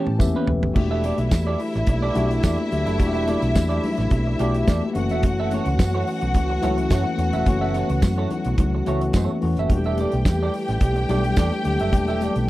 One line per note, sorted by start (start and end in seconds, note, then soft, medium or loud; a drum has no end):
0.00 0.19 E3 medium
0.00 0.72 E3 medium
0.00 0.19 A3 medium
0.00 0.58 A3 medium
0.00 0.19 B3 medium
0.00 0.58 B3 medium
0.00 0.19 C#4 medium
0.00 0.58 C#4 medium
0.00 0.58 G4 medium
0.00 0.15 A4 medium
0.00 0.78 A4 medium
0.00 0.18 G5 medium
0.00 0.15 A5 loud
0.07 0.18 A2 medium
0.07 muted clean electric guitar stroke soft
0.07 mid tom medium
0.19 0.32 E2 medium
0.19 0.61 E3 medium
0.19 0.61 A3 medium
0.19 0.61 B3 medium
0.19 0.61 C#4 medium
0.19 0.61 G4 medium
0.19 0.46 E5 medium
0.19 muted clean electric guitar stroke soft
0.19 kick loud
0.19 mid tom medium
0.19 tambourine medium
0.19 high conga medium
0.35 0.48 C#4 medium
0.35 0.49 G4 medium
0.35 0.50 B4 medium
0.35 high conga medium
0.47 0.63 E1 medium
0.47 0.73 B4 medium
0.47 muted clean electric guitar stroke soft
0.47 floor tom loud
0.63 0.74 F#1 medium
0.63 muted clean electric guitar stroke soft
0.63 floor tom loud
0.74 1.11 E1 loud
0.74 12.50 E3 medium
0.74 4.91 G3 medium
0.74 1.57 A3 medium
0.74 4.91 A3 medium
0.74 1.57 D4 medium
0.74 4.91 D4 medium
0.74 2.97 E4 medium
0.74 4.91 E4 medium
0.74 1.56 F#4 medium
0.74 1.57 G4 medium
0.74 4.91 E5 loud
0.74 muted clean electric guitar stroke soft
0.74 kick loud
0.74 crash medium
0.74 muted conga soft
0.91 1.03 G4 medium
0.91 1.04 A4 medium
0.91 1.05 E5 medium
1.04 1.17 G4 medium
1.04 1.18 A4 medium
1.04 1.18 D5 medium
1.04 closed hi-hat medium
1.04 muted conga medium
1.18 1.29 B1 medium
1.18 closed hi-hat soft
1.31 1.55 E2 medium
1.31 muted clean electric guitar stroke soft
1.31 kick loud
1.31 snare loud
1.31 closed hi-hat medium
1.31 tambourine medium
1.31 high conga medium
1.47 1.60 G4 medium
1.47 1.60 A4 medium
1.47 1.60 D5 medium
1.60 muted clean electric guitar stroke soft
1.60 open hi-hat medium
1.74 1.86 A1 medium
1.74 muted clean electric guitar stroke soft
1.74 snare soft
1.74 closed hi-hat soft
1.87 2.10 B1 medium
1.87 muted clean electric guitar stroke medium
1.87 kick medium
1.87 closed hi-hat medium
1.87 muted conga medium
2.02 2.14 G4 medium
2.02 2.15 A4 medium
2.02 2.15 D5 medium
2.14 2.38 B1 medium
2.14 2.57 A3 medium
2.14 2.57 D4 medium
2.14 2.56 F#4 medium
2.14 2.29 G4 medium
2.14 2.57 G4 loud
2.14 2.29 A4 medium
2.14 2.30 D5 medium
2.14 closed hi-hat medium
2.14 muted conga soft
2.14 low conga medium
2.31 closed hi-hat soft
2.43 2.56 E2 loud
2.43 2.60 G4 medium
2.43 2.59 A4 medium
2.43 2.58 D5 medium
2.43 kick loud
2.43 snare loud
2.43 closed hi-hat medium
2.43 tambourine medium
2.43 high conga medium
2.58 muted clean electric guitar stroke soft
2.58 high conga medium
2.71 2.84 D2 medium
2.71 2.92 F#3 medium
2.71 2.92 A3 medium
2.71 2.92 D4 medium
2.71 2.93 G4 medium
2.71 muted clean electric guitar stroke soft
2.71 closed hi-hat medium
2.86 3.00 F#1 medium
2.86 2.99 G4 soft
2.86 2.99 A4 medium
2.86 2.98 E5 medium
2.86 closed hi-hat soft
2.86 high conga medium
2.98 3.35 E1 loud
2.98 3.81 A3 medium
2.98 3.81 D4 medium
2.98 4.93 E4 medium
2.98 3.07 F#4 medium
2.98 muted clean electric guitar stroke soft
2.98 kick loud
2.98 closed hi-hat medium
2.98 muted conga soft
3.07 3.85 G4 medium
3.13 3.26 G4 medium
3.13 3.26 A4 medium
3.13 3.28 E5 medium
3.13 closed hi-hat soft
3.27 3.41 G4 medium
3.27 3.41 A4 medium
3.27 3.41 D5 medium
3.27 closed hi-hat medium
3.27 muted conga medium
3.42 3.53 B1 medium
3.42 muted clean electric guitar stroke medium
3.42 closed hi-hat soft
3.55 3.78 E2 loud
3.55 muted clean electric guitar stroke soft
3.55 kick loud
3.55 snare loud
3.55 closed hi-hat medium
3.55 tambourine medium
3.55 high conga medium
3.69 3.83 G4 medium
3.69 3.83 A4 medium
3.69 3.84 D5 medium
3.69 closed hi-hat soft
3.83 open hi-hat medium
3.83 low conga medium
3.98 4.09 A1 loud
3.98 muted clean electric guitar stroke medium
3.98 snare soft
3.98 closed hi-hat soft
4.11 4.34 B1 medium
4.11 muted clean electric guitar stroke soft
4.11 kick loud
4.11 closed hi-hat medium
4.11 muted conga medium
4.27 muted clean electric guitar stroke soft
4.39 4.62 B1 loud
4.39 4.81 A3 medium
4.39 4.82 D4 medium
4.39 4.81 F#4 medium
4.39 4.56 G4 medium
4.39 4.82 G4 loud
4.39 4.56 A4 medium
4.39 4.55 D5 medium
4.39 closed hi-hat medium
4.54 muted clean electric guitar stroke soft
4.54 closed hi-hat soft
4.67 4.80 E2 medium
4.67 4.85 G4 medium
4.67 4.84 A4 medium
4.67 4.83 D5 loud
4.67 kick loud
4.67 snare loud
4.67 closed hi-hat medium
4.67 tambourine medium
4.67 high conga medium
4.82 muted clean electric guitar stroke soft
4.82 high conga medium
4.94 5.10 F#1 medium
4.94 5.85 E3 medium
4.94 9.65 F#3 medium
4.94 5.85 A3 medium
4.94 9.66 A3 medium
4.94 7.16 C#4 medium
4.94 5.85 C#4 medium
4.94 9.66 F#4 medium
4.94 5.85 F#4 loud
4.94 9.39 F#4 medium
4.94 9.39 F#5 medium
4.94 muted clean electric guitar stroke soft
4.94 closed hi-hat medium
5.09 5.24 E1 medium
5.09 5.23 E4 soft
5.09 5.23 A4 medium
5.09 5.23 E5 medium
5.09 closed hi-hat soft
5.09 high conga medium
5.23 5.59 F#1 loud
5.23 muted clean electric guitar stroke soft
5.23 kick loud
5.23 closed hi-hat medium
5.23 muted conga soft
5.40 5.52 E4 medium
5.40 5.53 A4 medium
5.40 5.54 E5 medium
5.51 5.66 E4 medium
5.51 5.66 A4 medium
5.51 5.66 C#5 medium
5.51 closed hi-hat medium
5.51 muted conga medium
5.66 5.79 C#2 medium
5.66 muted clean electric guitar stroke soft
5.66 closed hi-hat soft
5.79 6.02 F#2 loud
5.79 muted clean electric guitar stroke soft
5.79 kick loud
5.79 snare loud
5.79 closed hi-hat medium
5.79 tambourine medium
5.79 high conga medium
5.94 6.07 E4 medium
5.94 6.07 A4 medium
5.94 6.07 C#5 medium
6.07 muted clean electric guitar stroke soft
6.07 open hi-hat medium
6.21 6.35 B1 medium
6.21 muted clean electric guitar stroke soft
6.21 closed hi-hat soft
6.34 6.58 C#2 loud
6.34 muted clean electric guitar stroke soft
6.34 kick medium
6.34 closed hi-hat medium
6.34 muted conga medium
6.50 muted clean electric guitar stroke medium
6.62 6.86 C#2 medium
6.62 7.04 E3 medium
6.62 7.04 A3 medium
6.62 7.04 C#4 medium
6.62 6.80 E4 medium
6.62 6.70 E4 medium
6.62 6.77 A4 medium
6.62 6.76 C#5 loud
6.62 closed hi-hat medium
6.62 muted conga soft
6.62 low conga medium
6.70 7.08 F#4 medium
6.78 muted clean electric guitar stroke medium
6.78 closed hi-hat soft
6.90 7.03 F#2 loud
6.90 7.08 E4 medium
6.90 7.04 A4 medium
6.90 7.03 C#5 medium
6.90 kick loud
6.90 snare loud
6.90 closed hi-hat medium
6.90 tambourine medium
6.90 high conga medium
7.04 muted clean electric guitar stroke soft
7.04 high conga medium
7.17 7.30 E2 medium
7.17 7.39 E3 medium
7.17 7.39 A3 medium
7.17 9.67 B3 medium
7.17 7.39 C#4 medium
7.17 7.40 F#4 medium
7.17 muted clean electric guitar stroke soft
7.17 closed hi-hat medium
7.33 7.44 E1 medium
7.33 7.45 E4 medium
7.33 7.46 A4 medium
7.33 7.45 E5 medium
7.33 closed hi-hat soft
7.33 high conga medium
7.46 7.82 F#1 loud
7.46 8.28 E3 medium
7.46 8.28 A3 medium
7.46 8.28 C#4 medium
7.46 8.29 F#4 medium
7.46 muted clean electric guitar stroke soft
7.46 kick loud
7.46 closed hi-hat medium
7.46 muted conga soft
7.61 7.74 E4 medium
7.61 7.75 A4 medium
7.61 7.77 E5 medium
7.74 7.88 E4 medium
7.74 7.89 A4 medium
7.74 7.89 C#5 medium
7.74 closed hi-hat medium
7.74 muted conga medium
7.90 8.00 C#2 loud
7.90 muted clean electric guitar stroke soft
7.90 closed hi-hat soft
8.02 8.25 F#2 loud
8.02 muted clean electric guitar stroke soft
8.02 kick loud
8.02 snare loud
8.02 closed hi-hat medium
8.02 tambourine medium
8.02 high conga medium
8.18 8.30 E4 medium
8.18 8.31 A4 medium
8.18 8.31 C#5 medium
8.31 muted clean electric guitar stroke soft
8.31 closed hi-hat medium
8.31 low conga medium
8.45 8.56 B1 medium
8.45 muted clean electric guitar stroke soft
8.45 closed hi-hat soft
8.58 8.81 C#2 medium
8.58 muted clean electric guitar stroke soft
8.58 kick loud
8.58 closed hi-hat medium
8.58 muted conga medium
8.58 low conga medium
8.75 muted clean electric guitar stroke soft
8.86 9.09 C#2 medium
8.86 9.27 E3 medium
8.86 9.28 A3 medium
8.86 9.28 C#4 medium
8.86 9.04 E4 medium
8.86 9.28 F#4 loud
8.86 9.02 A4 medium
8.86 9.01 C#5 loud
8.86 closed hi-hat medium
8.86 muted conga soft
9.01 muted clean electric guitar stroke soft
9.01 closed hi-hat medium
9.13 9.26 F#2 medium
9.13 9.36 E4 medium
9.13 9.31 A4 medium
9.13 9.30 C#5 medium
9.13 kick loud
9.13 snare loud
9.13 closed hi-hat medium
9.13 tambourine medium
9.13 high conga medium
9.28 muted clean electric guitar stroke soft
9.28 high conga medium
9.41 9.55 E2 medium
9.41 9.62 E3 medium
9.41 9.63 A3 medium
9.41 9.63 C#4 medium
9.41 9.63 F#4 medium
9.41 muted clean electric guitar stroke soft
9.41 open hi-hat medium
9.57 9.68 F#1 medium
9.57 9.70 E4 soft
9.57 9.70 A4 medium
9.57 9.70 E5 medium
9.57 closed hi-hat soft
9.57 high conga medium
9.69 10.05 E1 medium
9.69 12.50 G3 medium
9.69 10.51 G3 medium
9.69 10.51 A3 medium
9.69 12.50 A3 medium
9.69 12.50 D4 medium
9.69 10.52 D4 medium
9.69 9.77 F#4 medium
9.69 11.90 G4 medium
9.69 12.50 G4 medium
9.69 12.50 G5 medium
9.69 muted clean electric guitar stroke soft
9.69 kick loud
9.69 closed hi-hat medium
9.69 muted conga soft
9.77 10.55 G4 medium
9.84 9.98 G4 medium
9.84 9.99 A4 medium
9.84 10.00 E5 medium
9.84 closed hi-hat soft
9.98 10.12 G4 medium
9.98 10.13 A4 medium
9.98 10.13 D5 medium
9.98 closed hi-hat medium
9.98 muted conga medium
10.12 10.24 B1 medium
10.12 closed hi-hat soft
10.25 10.48 E2 medium
10.25 muted clean electric guitar stroke soft
10.25 kick loud
10.25 snare loud
10.25 closed hi-hat medium
10.25 tambourine medium
10.25 high conga medium
10.43 10.53 G4 medium
10.43 10.54 A4 medium
10.43 10.54 D5 medium
10.54 muted clean electric guitar stroke soft
10.54 open hi-hat medium
10.68 10.79 A1 medium
10.68 muted clean electric guitar stroke soft
10.68 snare soft
10.68 closed hi-hat soft
10.81 11.04 B1 medium
10.81 muted clean electric guitar stroke soft
10.81 kick loud
10.81 closed hi-hat medium
10.81 muted conga medium
10.96 muted clean electric guitar stroke soft
10.96 closed hi-hat soft
11.09 11.32 B1 loud
11.09 11.51 G3 medium
11.09 11.51 A3 medium
11.09 11.51 D4 medium
11.09 11.26 G4 medium
11.09 11.51 G4 loud
11.09 11.25 A4 medium
11.09 11.24 D5 medium
11.09 closed hi-hat medium
11.09 low conga medium
11.24 muted clean electric guitar stroke soft
11.24 closed hi-hat medium
11.36 11.49 E2 medium
11.36 11.54 G4 medium
11.36 11.53 A4 medium
11.36 11.52 D5 loud
11.36 kick loud
11.36 snare loud
11.36 closed hi-hat medium
11.36 tambourine medium
11.36 high conga medium
11.51 muted clean electric guitar stroke soft
11.51 closed hi-hat soft
11.51 high conga medium
11.64 11.77 D2 medium
11.64 11.85 F#3 medium
11.64 11.85 A3 medium
11.64 11.86 D4 medium
11.64 11.86 G4 medium
11.64 muted clean electric guitar stroke soft
11.64 closed hi-hat medium
11.79 11.93 F#1 medium
11.79 11.93 G4 soft
11.79 11.93 A4 medium
11.79 11.92 E5 medium
11.79 closed hi-hat soft
11.79 high conga medium
11.91 12.28 E1 loud
11.91 12.50 G3 medium
11.91 12.50 A3 medium
11.91 12.50 D4 medium
11.91 12.50 G4 medium
11.91 12.50 A4 medium
11.91 muted clean electric guitar stroke soft
11.91 kick loud
11.91 closed hi-hat medium
11.91 muted conga medium
12.08 12.21 G4 medium
12.08 12.21 A4 medium
12.08 12.23 E5 medium
12.08 closed hi-hat soft
12.21 12.35 G4 medium
12.21 12.35 A4 medium
12.21 12.36 D5 medium
12.21 closed hi-hat medium
12.21 muted conga medium
12.36 12.47 B1 medium
12.36 closed hi-hat soft